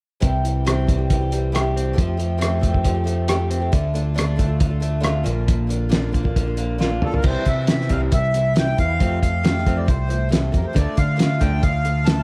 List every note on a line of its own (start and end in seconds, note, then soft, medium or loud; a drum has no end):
0.20 1.94 C2 medium
0.20 0.43 C3 medium
0.20 0.43 E3 medium
0.20 0.43 G3 medium
0.20 0.43 C4 medium
0.20 0.43 G4 medium
0.20 kick medium
0.20 closed hi-hat medium
0.44 0.65 E3 medium
0.44 0.65 G3 soft
0.44 0.65 C4 medium
0.44 0.66 G4 medium
0.44 closed hi-hat soft
0.65 0.87 C3 medium
0.65 0.86 E3 medium
0.65 0.87 G3 medium
0.65 0.87 C4 medium
0.65 0.88 G4 medium
0.65 cross-stick medium
0.65 closed hi-hat medium
0.87 0.98 E3 medium
0.87 0.99 G3 soft
0.87 0.98 C4 medium
0.87 0.97 G4 medium
0.87 kick medium
0.87 closed hi-hat soft
0.98 1.21 G3 soft
0.98 1.20 C4 soft
0.98 1.20 G4 soft
1.10 1.98 E3 medium
1.10 kick medium
1.10 closed hi-hat medium
1.21 1.30 G3 soft
1.21 1.31 C4 soft
1.21 1.31 G4 soft
1.31 1.51 E3 soft
1.31 1.51 G3 soft
1.31 1.52 C4 medium
1.31 1.52 G4 soft
1.31 closed hi-hat medium
1.52 1.64 C3 medium
1.52 1.64 E3 medium
1.52 1.63 G3 medium
1.52 1.62 C4 medium
1.52 1.61 G4 medium
1.52 cross-stick medium
1.52 closed hi-hat medium
1.62 1.84 G3 soft
1.62 1.84 C4 soft
1.62 1.83 G4 soft
1.76 1.98 C4 medium
1.76 closed hi-hat medium
1.84 1.94 G3 soft
1.84 1.93 C4 soft
1.84 1.94 G4 soft
1.93 2.16 F3 medium
1.93 2.16 A3 medium
1.93 2.16 C4 medium
1.93 2.17 G4 medium
1.98 3.70 F2 medium
1.98 2.18 F3 medium
1.98 kick medium
1.98 closed hi-hat medium
2.17 2.36 F3 medium
2.17 2.37 A3 medium
2.17 2.38 C4 medium
2.17 2.37 G4 medium
2.17 closed hi-hat medium
2.38 2.58 F3 medium
2.38 2.60 A3 medium
2.38 2.60 C4 medium
2.38 2.60 G4 medium
2.38 closed hi-hat medium
2.42 cross-stick medium
2.59 2.72 F3 medium
2.59 2.71 A3 medium
2.59 2.70 C4 medium
2.59 2.69 G4 medium
2.59 kick medium
2.59 closed hi-hat soft
2.70 2.95 A3 soft
2.70 2.93 C4 soft
2.70 2.93 G4 soft
2.74 kick medium
2.84 3.73 F3 medium
2.84 kick medium
2.84 closed hi-hat medium
2.94 3.03 A3 soft
2.94 3.04 C4 soft
2.94 3.05 G4 soft
3.04 3.27 F3 soft
3.04 3.27 A3 soft
3.04 3.27 C4 medium
3.04 3.28 G4 medium
3.04 closed hi-hat soft
3.28 3.39 F3 medium
3.28 3.39 A3 medium
3.28 3.38 C4 medium
3.28 3.37 G4 medium
3.28 cross-stick medium
3.28 closed hi-hat medium
3.38 3.61 A3 soft
3.38 3.60 C4 soft
3.38 3.59 G4 soft
3.50 3.73 C4 medium
3.50 closed hi-hat soft
3.60 3.71 A3 soft
3.60 3.72 C4 soft
3.60 3.72 G4 soft
3.72 5.24 D2 medium
3.72 3.92 D3 medium
3.72 3.93 A3 medium
3.72 3.94 D4 medium
3.72 3.95 F4 medium
3.72 kick loud
3.72 closed hi-hat medium
3.94 4.13 D3 medium
3.94 4.14 A3 medium
3.94 4.14 D4 medium
3.94 4.15 F4 medium
3.94 closed hi-hat medium
4.14 4.35 D3 medium
4.14 4.35 A3 medium
4.14 4.36 D4 medium
4.14 4.37 F4 medium
4.14 closed hi-hat medium
4.19 cross-stick medium
4.36 4.48 D3 medium
4.36 4.48 A3 medium
4.36 4.47 D4 medium
4.36 4.46 F4 medium
4.36 kick medium
4.36 closed hi-hat medium
4.47 4.70 A3 soft
4.47 4.69 D4 soft
4.47 4.67 F4 soft
4.60 5.26 D3 medium
4.60 kick medium
4.60 closed hi-hat medium
4.69 4.79 A3 soft
4.69 4.80 D4 soft
4.69 4.81 F4 soft
4.80 4.99 D3 medium
4.80 5.00 A3 medium
4.80 5.00 D4 medium
4.80 5.00 F4 medium
4.80 closed hi-hat medium
5.00 5.14 D3 medium
5.00 5.13 A3 medium
5.00 5.12 D4 medium
5.00 5.11 F4 medium
5.00 closed hi-hat medium
5.04 cross-stick medium
5.12 5.25 A3 soft
5.12 5.23 D4 soft
5.12 5.24 F4 soft
5.23 6.99 A#1 medium
5.23 5.69 A#2 medium
5.23 5.66 D3 medium
5.23 5.68 A#3 medium
5.23 5.68 D4 medium
5.23 5.68 F4 medium
5.23 closed hi-hat medium
5.47 6.58 A#2 medium
5.47 kick medium
5.47 closed hi-hat medium
5.67 5.88 D3 medium
5.67 5.88 A#3 medium
5.67 5.88 D4 medium
5.67 5.89 F4 medium
5.67 closed hi-hat medium
5.89 6.13 A#2 medium
5.89 6.11 D3 medium
5.89 6.11 A#3 medium
5.89 6.11 D4 medium
5.89 6.12 F4 medium
5.89 snare loud
5.89 closed hi-hat medium
6.12 6.24 D3 medium
6.12 6.24 A#3 medium
6.12 6.23 D4 medium
6.12 6.22 F4 medium
6.12 kick medium
6.12 closed hi-hat soft
6.23 6.46 A#3 soft
6.23 6.46 D4 soft
6.23 6.44 F4 soft
6.23 kick medium
6.36 7.24 D3 medium
6.36 kick medium
6.36 closed hi-hat medium
6.46 6.57 A#3 soft
6.46 6.57 D4 soft
6.46 6.57 F4 soft
6.56 6.77 D3 soft
6.56 6.78 A#3 medium
6.56 6.78 D4 medium
6.56 6.79 F4 medium
6.56 closed hi-hat medium
6.78 6.90 A#2 medium
6.78 6.90 D3 medium
6.78 6.90 A#3 medium
6.78 6.89 D4 medium
6.78 6.88 F4 medium
6.78 snare soft
6.90 7.12 A#3 soft
6.90 7.11 D4 soft
6.90 7.10 F4 soft
7.02 7.25 D4 medium
7.02 7.15 A4 medium
7.02 mid tom medium
7.11 7.23 A#3 soft
7.11 7.23 D4 soft
7.11 7.23 F4 soft
7.11 floor tom medium
7.16 7.26 A#4 medium
7.22 7.35 C2 medium
7.22 7.45 C3 medium
7.22 7.43 E3 medium
7.22 7.44 G3 medium
7.22 7.45 C4 medium
7.22 7.46 E4 medium
7.22 7.48 C5 medium
7.22 kick medium
7.22 crash medium
7.45 7.66 C3 medium
7.45 7.87 C3 medium
7.45 7.66 E3 soft
7.45 7.67 G3 medium
7.45 7.68 C4 medium
7.45 7.68 E4 medium
7.45 7.92 E5 medium
7.45 kick medium
7.45 closed hi-hat medium
7.67 7.90 C3 medium
7.67 7.88 E3 medium
7.67 7.89 G3 medium
7.67 7.89 C4 medium
7.67 7.91 E4 medium
7.67 snare medium
7.67 closed hi-hat medium
7.81 snare soft
7.89 8.11 C2 medium
7.89 8.11 C3 medium
7.89 8.01 E3 medium
7.89 8.01 G3 medium
7.89 8.01 C4 medium
7.89 7.99 E4 soft
7.89 8.01 F5 medium
7.89 kick medium
7.89 closed hi-hat medium
8.01 8.11 G3 soft
8.01 8.11 C4 soft
8.01 8.12 E4 soft
8.11 8.74 C2 medium
8.11 8.32 C3 medium
8.11 8.33 E3 medium
8.11 8.33 G3 medium
8.11 8.34 C4 medium
8.11 8.34 E4 medium
8.11 8.54 E5 medium
8.11 kick medium
8.11 closed hi-hat medium
8.34 8.54 C3 medium
8.34 8.53 E3 soft
8.34 8.53 G3 soft
8.34 8.54 C4 medium
8.34 8.54 E4 medium
8.34 closed hi-hat medium
8.54 8.77 C3 medium
8.54 8.75 E3 medium
8.54 8.76 G3 medium
8.54 8.77 C4 medium
8.54 8.77 E4 medium
8.54 snare medium
8.54 closed hi-hat medium
8.59 8.78 G5 medium
8.76 8.99 E2 medium
8.76 8.98 C3 medium
8.76 8.88 E3 soft
8.76 8.89 G3 medium
8.76 8.87 C4 soft
8.76 8.86 E4 medium
8.76 9.19 F5 medium
8.76 kick medium
8.76 closed hi-hat medium
8.88 9.00 G3 soft
8.88 8.99 C4 soft
8.88 8.99 E4 medium
8.99 9.21 F2 medium
8.99 9.21 F3 medium
8.99 9.22 A3 medium
8.99 9.22 C4 medium
8.99 9.23 G4 medium
8.99 kick medium
8.99 closed hi-hat medium
9.22 9.63 F2 medium
9.22 9.42 F3 medium
9.22 9.42 A3 medium
9.22 9.43 C4 medium
9.22 9.43 G4 medium
9.22 9.78 F5 medium
9.22 kick medium
9.22 closed hi-hat medium
9.43 9.63 F3 medium
9.43 9.64 A3 medium
9.43 9.65 C4 medium
9.43 9.65 G4 medium
9.43 snare medium
9.43 closed hi-hat medium
9.57 snare soft
9.65 9.87 F2 medium
9.65 9.76 F3 soft
9.65 9.76 A3 medium
9.65 9.77 C4 medium
9.65 9.75 G4 medium
9.65 kick medium
9.65 closed hi-hat medium
9.76 9.86 A3 soft
9.76 9.86 C4 soft
9.76 9.87 G4 soft
9.76 9.88 D5 medium
9.86 10.50 C2 medium
9.86 10.06 F3 medium
9.86 10.07 A3 medium
9.86 10.07 C4 medium
9.86 10.08 G4 medium
9.86 10.29 C5 medium
9.86 kick medium
9.86 closed hi-hat medium
10.07 10.28 F3 soft
10.07 10.28 A3 soft
10.07 10.29 C4 soft
10.07 10.29 G4 soft
10.07 closed hi-hat soft
10.29 10.50 F3 medium
10.29 10.51 A3 medium
10.29 10.51 C4 medium
10.29 10.52 G4 medium
10.29 closed hi-hat medium
10.33 snare medium
10.52 10.64 F2 medium
10.52 10.63 F3 soft
10.52 10.63 A3 soft
10.52 10.62 C4 medium
10.52 10.61 G4 medium
10.52 kick medium
10.52 closed hi-hat soft
10.56 10.66 A#4 medium
10.62 10.72 A3 soft
10.62 10.74 C4 soft
10.62 10.74 G4 soft
10.67 10.77 C5 medium
10.73 10.86 D2 medium
10.73 10.94 D3 medium
10.73 10.94 A3 medium
10.73 10.95 D4 medium
10.73 10.96 F4 medium
10.73 10.98 D5 medium
10.73 kick medium
10.73 closed hi-hat medium
10.95 11.15 D3 soft
10.95 11.39 D3 medium
10.95 11.16 A3 soft
10.95 11.16 D4 medium
10.95 11.17 F4 medium
10.95 11.43 F5 medium
10.95 kick medium
10.95 closed hi-hat medium
11.16 11.37 D3 medium
11.16 11.38 A3 medium
11.16 11.38 D4 medium
11.16 11.39 F4 medium
11.16 closed hi-hat medium
11.20 11.40 D3 medium
11.20 snare medium
11.38 11.62 D2 medium
11.38 11.51 D3 soft
11.38 11.51 A3 medium
11.38 11.51 D4 medium
11.38 11.50 F4 medium
11.38 11.63 G5 medium
11.38 kick medium
11.38 closed hi-hat medium
11.51 11.61 A3 soft
11.51 11.62 D4 soft
11.51 11.62 F4 soft
11.62 12.23 D2 medium
11.62 11.82 D3 soft
11.62 11.83 A3 medium
11.62 11.84 D4 medium
11.62 11.85 F4 medium
11.62 12.08 F5 medium
11.62 kick medium
11.62 closed hi-hat medium
11.83 12.03 D3 soft
11.83 12.04 A3 soft
11.83 12.04 D4 soft
11.83 12.05 F4 medium
11.83 closed hi-hat medium
12.04 12.23 D3 medium
12.04 12.23 A3 medium
12.04 12.23 D4 medium
12.04 12.23 F4 medium
12.04 12.21 A5 medium
12.04 snare loud
12.04 closed hi-hat medium
12.18 12.23 F5 medium